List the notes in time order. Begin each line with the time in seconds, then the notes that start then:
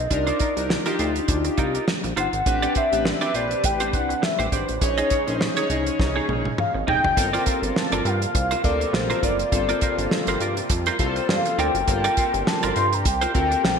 Already playing: D#5
0.10 C2 D4 D#4 F4 A#4 D5, muted clean electric guitar stroke, kick, closed hi-hat
0.27 D#4 F4 C5, closed hi-hat
0.40 D#4 F4 A#4, kick, closed hi-hat
0.56 C2 D4 D#4 F4 A#4, muted clean electric guitar stroke, closed hi-hat
0.69 muted clean electric guitar stroke, snare
0.86 D4 D#4 F4 G4 A#4, closed hi-hat
0.98 D2 D#4 F4 C5, closed hi-hat
1.15 muted clean electric guitar stroke, closed hi-hat
1.28 D2, muted clean electric guitar stroke, kick, closed hi-hat
1.45 muted clean electric guitar stroke, closed hi-hat
1.58 C2 D#4 F4 A#4, kick, closed hi-hat
1.74 D#4 F4 A#4, closed hi-hat
1.88 snare
2.04 A#1, muted clean electric guitar stroke, closed hi-hat
2.16 G1 D#4 F4 C5 F#5, closed hi-hat
2.33 G#1, muted clean electric guitar stroke, closed hi-hat
2.46 A1 C3 G3 C4 D4 G4 B4, muted clean electric guitar stroke, kick, closed hi-hat
2.62 D4 G4 D5, closed hi-hat
2.75 D4 G4 C5 E5, kick, closed hi-hat
2.92 A1 C4 D4 G4 B4, muted clean electric guitar stroke, closed hi-hat
3.05 E5, muted clean electric guitar stroke, snare
3.21 C4 D4 G4 B4 D5, closed hi-hat
3.34 A#1 D4 G4 C5 D5, closed hi-hat
3.51 muted clean electric guitar stroke, closed hi-hat
3.64 A1 G5, muted clean electric guitar stroke, kick, closed hi-hat
3.80 D4 G4 C5, closed hi-hat
3.93 C2 F#5, muted clean electric guitar stroke, kick, closed hi-hat
4.09 muted clean electric guitar stroke, closed hi-hat
4.22 E5, muted clean electric guitar stroke, snare
4.39 A1 D4 G4 C5, closed hi-hat
4.52 G#1 D4 G4 C5 D5, kick, closed hi-hat
4.68 A1, muted clean electric guitar stroke, closed hi-hat
4.80 A#1 C#3 G#3 C#4 D#4 G#4 C#5, muted clean electric guitar stroke, kick, closed hi-hat
4.98 D#4 G#4 D#5, closed hi-hat
5.10 D#4 G#4 C#5, kick, closed hi-hat
5.27 A#1 C#4 D#4 G#4 C5, muted clean electric guitar stroke, closed hi-hat
5.41 muted clean electric guitar stroke, snare
5.56 C#4 D#4 G#4 C#5, closed hi-hat
5.70 C2 D#4 G#4 D#5, closed hi-hat
5.87 muted clean electric guitar stroke, closed hi-hat
5.99 C2, muted clean electric guitar stroke, kick, snare
6.16 D#4 G#4 C#5
6.29 A#1, muted clean electric guitar stroke, high tom
6.45 muted clean electric guitar stroke, high tom
6.58 F5, muted clean electric guitar stroke, mid tom
6.74 G#1, muted clean electric guitar stroke
6.87 F1 D#4 G#4 D#5 G5, floor tom
7.04 F#1, muted clean electric guitar stroke, floor tom
7.16 G1 C3 G3 A#3 C4 F4 A4 A#4, muted clean electric guitar stroke, kick, closed hi-hat
7.33 F4 A#4 D5, closed hi-hat
7.46 F4 A#4 C5, kick, closed hi-hat
7.62 G1, muted clean electric guitar stroke, closed hi-hat
7.76 A5, muted clean electric guitar stroke, snare
7.92 G1 F4 A#4 D5, closed hi-hat
8.05 G2 F4 A#4 C5 F5, closed hi-hat
8.21 muted clean electric guitar stroke, closed hi-hat
8.34 C2, muted clean electric guitar stroke, kick, closed hi-hat
8.51 F4 A#4 C5, closed hi-hat
8.64 D2 C4 F4 A4 A#4 D5, muted clean electric guitar stroke, kick, closed hi-hat
8.80 muted clean electric guitar stroke, closed hi-hat
8.93 A#1 C5, muted clean electric guitar stroke, snare
9.10 F4 A#4 C5, closed hi-hat
9.23 F#1 F4 A#4 D5, kick, closed hi-hat
9.39 muted clean electric guitar stroke, closed hi-hat
9.52 G1 C4 F4 A4 C5, muted clean electric guitar stroke, kick, closed hi-hat
9.69 F4 A#4 D5, closed hi-hat
9.81 F4 A#4 C5, kick, closed hi-hat
9.98 G1, muted clean electric guitar stroke, closed hi-hat
10.11 muted clean electric guitar stroke, snare
10.27 G1 F4 A#4 C5, closed hi-hat
10.40 G2 F4 A#4 D5, closed hi-hat
10.57 muted clean electric guitar stroke, closed hi-hat
10.70 F2, muted clean electric guitar stroke, kick, closed hi-hat
10.86 F4 A#4 C5, closed hi-hat
10.99 C2 C4 F4 A4 C5, muted clean electric guitar stroke, kick, closed hi-hat
11.16 muted clean electric guitar stroke, closed hi-hat
11.29 G2 F5, muted clean electric guitar stroke, snare
11.45 muted clean electric guitar stroke, closed hi-hat
11.58 D2 F4 A#4 D5 G5, closed hi-hat
11.75 F#1, muted clean electric guitar stroke, closed hi-hat
11.87 G1 C4 F4 G4 A4 A#4, muted clean electric guitar stroke, kick, closed hi-hat
12.04 F4 A#4 D5, closed hi-hat
12.17 F4 A#4 C5, kick, closed hi-hat
12.33 G1, muted clean electric guitar stroke, closed hi-hat
12.47 A5, muted clean electric guitar stroke, snare
12.63 G1 F4 A#4 D5 C6, closed hi-hat
12.75 G2 F4 A#4 C5, closed hi-hat
12.92 A#5, muted clean electric guitar stroke, closed hi-hat
13.05 C2 G5, muted clean electric guitar stroke, kick, closed hi-hat
13.21 F4 A#4 C5, closed hi-hat
13.34 D2 C4 F4 A4 A#4, muted clean electric guitar stroke, kick, closed hi-hat
13.51 muted clean electric guitar stroke, closed hi-hat
13.64 A#1, muted clean electric guitar stroke, snare